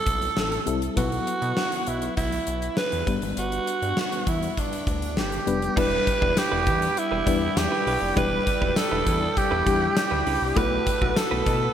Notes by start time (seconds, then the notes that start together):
Already playing: G3 C4 E4 A4
0.06 B1, kick, closed hi-hat
0.22 closed hi-hat
0.37 A1, snare
0.52 closed hi-hat
0.66 C2 G3 C4 E4 A4, closed hi-hat
0.82 closed hi-hat
0.96 B1 F#3 B3 E4 F#4 B4, kick, closed hi-hat
1.12 closed hi-hat
1.27 closed hi-hat
1.42 B2, closed hi-hat
1.57 snare
1.72 closed hi-hat
1.87 B1 E4, closed hi-hat
2.02 closed hi-hat
2.17 B1 E4, kick, closed hi-hat
2.32 closed hi-hat
2.47 B1, closed hi-hat
2.62 closed hi-hat
2.77 B4, snare
2.92 E2, closed hi-hat
3.07 G1 G3 B3 D4 B4, kick, closed hi-hat
3.22 G#1, closed hi-hat
3.37 G1 F#4, closed hi-hat
3.52 closed hi-hat
3.67 closed hi-hat
3.82 G2, closed hi-hat
3.97 snare
4.12 closed hi-hat
4.27 E2 E4, kick, closed hi-hat
4.43 closed hi-hat
4.57 D4, kick, closed hi-hat
4.73 closed hi-hat
4.87 D2, kick, closed hi-hat
5.02 closed hi-hat
5.17 G1 G4, snare
5.32 closed hi-hat
5.46 F1 G3 B3 D4 B4, closed hi-hat
5.62 closed hi-hat
5.76 E1 G3 D4 E4 B4 D5 G5 B5 E6, kick, crash
6.07 muted clean electric guitar stroke, kick, closed hi-hat
6.21 E1 G3 D4 E4 B4, kick
6.37 G4, snare, closed hi-hat, tambourine
6.51 E1 G3 D4 E4 B4
6.66 E2 G3 D4 E4 B4, kick, closed hi-hat
6.81 muted clean electric guitar stroke, closed hi-hat
6.96 E4, muted clean electric guitar stroke, closed hi-hat
7.11 E1 G3 D4 E4 B4
7.26 E2 G3 D4 E4 B4, muted clean electric guitar stroke, kick, closed hi-hat
7.41 muted clean electric guitar stroke
7.57 E2 G4, muted clean electric guitar stroke, snare, closed hi-hat, tambourine
7.72 G3 D4 E4 B4
7.87 B1 G3 D4 E4 B4, open hi-hat
8.02 F1, muted clean electric guitar stroke
8.16 E1 G3 D4 E4 G4 B4, kick, closed hi-hat
8.46 muted clean electric guitar stroke, kick, closed hi-hat
8.61 E1 G3 D4 E4 B4, kick
8.76 A4, snare, closed hi-hat, tambourine
8.92 E1 G3 D4 E4 B4
9.06 E2 G3 D4 E4 B4, kick, closed hi-hat
9.22 muted clean electric guitar stroke
9.36 G4, muted clean electric guitar stroke, kick, closed hi-hat
9.51 E1 G3 D4 E4 B4
9.66 E2 G3 D4 E4 G4, kick, closed hi-hat
9.81 muted clean electric guitar stroke
9.96 G4, muted clean electric guitar stroke, snare, closed hi-hat, tambourine
10.11 D2 G3 D4 E4 B4
10.26 C#2 G3 D4 E4 B4, open hi-hat
10.42 C2
10.56 B1 A3 E4 F#4 B4 F#5 A5, kick, closed hi-hat
10.87 muted clean electric guitar stroke, kick, closed hi-hat
11.01 B1 A3 E4 F#4 B4, kick
11.16 A4, snare, closed hi-hat, tambourine
11.31 B1 A3 E4 F#4 B4
11.46 B2 A3 E4 F#4 B4, kick, closed hi-hat
11.61 muted clean electric guitar stroke